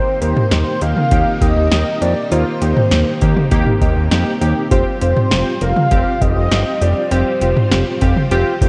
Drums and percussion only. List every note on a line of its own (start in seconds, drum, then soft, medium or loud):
0.22 closed hi-hat medium
0.37 mid tom medium
0.51 snare loud
0.51 closed hi-hat medium
0.81 closed hi-hat medium
0.97 mid tom medium
1.11 kick medium
1.11 closed hi-hat medium
1.41 kick medium
1.41 closed hi-hat medium
1.72 snare loud
1.72 closed hi-hat medium
2.02 closed hi-hat medium
2.32 closed hi-hat medium
2.62 closed hi-hat medium
2.77 mid tom medium
2.91 snare loud
2.91 closed hi-hat medium
3.21 kick medium
3.21 closed hi-hat medium
3.36 mid tom medium
3.51 kick loud
3.51 closed hi-hat medium
3.66 mid tom medium
3.81 kick medium
3.81 closed hi-hat medium
4.11 snare loud
4.11 closed hi-hat medium
4.42 closed hi-hat medium
4.71 kick loud
4.71 closed hi-hat medium
5.01 closed hi-hat medium
5.17 mid tom medium
5.31 snare loud
5.31 closed hi-hat medium
5.61 closed hi-hat medium
5.76 mid tom medium
5.91 kick medium
5.91 closed hi-hat medium
6.21 kick medium
6.21 closed hi-hat medium
6.51 snare loud
6.51 closed hi-hat medium
6.82 closed hi-hat medium
7.11 closed hi-hat medium
7.42 closed hi-hat medium
7.57 mid tom medium
7.71 snare loud
7.71 closed hi-hat medium
8.01 kick medium
8.01 closed hi-hat medium
8.16 mid tom medium
8.31 closed hi-hat medium
8.61 kick medium
8.61 closed hi-hat medium